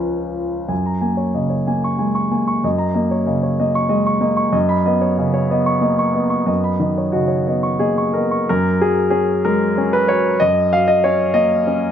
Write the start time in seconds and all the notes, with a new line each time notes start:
Already playing: C#2 F3 C#4 B4
0.69 F#2 G#5
0.86 A#5
1.01 A#3 G#5
1.17 C#5
1.34 C#3 D#5
1.50 C#5
1.67 A#3 G#5
1.84 C#6
1.99 G#3 G#5
2.15 C#6
2.31 A#3 G#5
2.48 C#6
2.64 F#2 D#5
2.78 A#5
2.95 A#3 D#5
3.11 C#5
3.26 C#3 D#5
3.43 C#5
3.60 A#3 D#5
3.75 C#6
3.89 G#3 D#5
4.07 C#6
4.21 A#3 D#5
4.37 C#6
4.53 F#2 D#5
4.69 B5
4.86 B3 D#5
5.01 C#5
5.18 C#3 D#5
5.34 C#5
5.50 B3 D#5
5.66 C#6
5.81 A#3 D#5
5.99 C#6
6.14 B3 D#5
6.30 C#6
6.46 F#2 D#5
6.64 B5
6.80 D#3 D#5
6.98 C#5
7.12 C#3 F#4 D#5
7.28 C#5
7.47 B3 D#5
7.63 C#6
7.79 A#3 G#4 D#5
7.98 C#6
8.13 B3 A#4 D#5
8.31 C#6
8.49 F#2 A#4
8.81 F#3 G#4
9.10 C#4 G#4
9.45 G#3 A#4
9.78 C#4
9.93 B4
10.08 F#3 C#5
10.40 F#2 D#5
10.73 F#3 F5
10.88 D#5
11.04 C#4 C#5
11.34 A#3 D#5
11.67 C#4